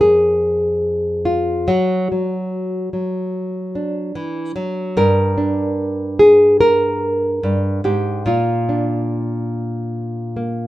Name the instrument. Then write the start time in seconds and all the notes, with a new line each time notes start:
nylon-string guitar
Already playing: F2 G#3 F4
0.01 G#4
1.25 F4
1.68 F#3 F#4
2.12 F#3
2.93 F#3
3.75 D4
4.15 E3
4.56 F#3
4.97 G2 A#4
5.38 D4
6.19 G#4
6.61 A#4
7.43 G2
7.84 G#2 G4
8.26 A#2 F4
8.69 D4
10.37 A#3